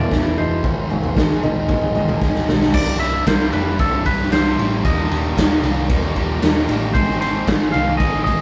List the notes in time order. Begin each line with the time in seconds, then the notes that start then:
Already playing: B2 E3 G#3 B3 E4 D5
0.10 E1 E2 B2 E3, kick, snare
0.37 F1 E2 B2 E3 G#3 C5
0.62 G#1 G#2 D#3 G#3, kick, floor tom
0.89 G#1 G#2 D#3 G#3 C4, floor tom
1.03 floor tom
1.16 G#1 G#2 D#3 G#3, kick, snare
1.43 G#1 G#2 D#3 G#3 D#4, floor tom, mid tom
1.68 G#1 G#2 D#3 G#3 G#4, kick, floor tom, mid tom
1.82 floor tom
1.95 G#1 G#2 D#3 G#3 D#4, floor tom
2.09 floor tom, mid tom
2.21 G#1 G#2 D#3 G#3, kick, snare
2.35 snare
2.48 B1 G#2 D#3 G#3 C4, snare
2.62 snare
2.74 C1 C2 G2 C3 G3 E4 D5, kick, crash
3.00 G3 E4 E5, ride
3.04 C3
3.26 C1 G2 C3 G3 E4 C5, kick, snare, ride
3.51 F1 C2 G2 C3 G3 E4 B4, ride
3.78 C1 G2 C3 G3 E4 A4, kick, ride
4.04 C1 C2 G2 C3 G3 E4 B4, kick, ride
4.20 snare
4.31 C1 G2 C3 G3 E4 C5, snare, ride
4.57 A1 C3 G3 E4, ride
4.84 D#1 D#2 A#2 D#3 G3 A#3 D#4 D#5, kick, ride
5.10 D#1 D#3 G3 A#3 D#4, ride
5.36 D#1 D#3 G3 A#3 D#4, kick, snare, ride
5.63 C2 D#2 A#2 D#3 G3 A#3 D#4, ride
5.89 D#1 D#3 G3 A#3 D#4, kick, ride
6.15 D#1 D#2 A#2 D#3 G3 A#3 D#4, kick, ride
6.42 D#1 D#3 G3 A#3 D#4, snare, ride
6.68 A1 D#3 G3 A#3 D#4, ride
6.93 G#1 G#2 D#3 G#3 C4 D#4 G#4 C5, kick, ride
7.10 snare
7.19 G#3 C4 D#4 G#4 C5, ride
7.46 G#1 G#3 C4 D#4 G#4, kick, snare, ride
7.72 C2 D#3 G#3 C4 D#4 G#4 F5, ride
7.76 G#2
7.97 G#1 G#3 C4 D#4 D#5, kick, ride
8.02 G#4
8.24 G#1 G#3 C4 D#4 G#4 D#5, kick, ride
8.28 G#2 D#3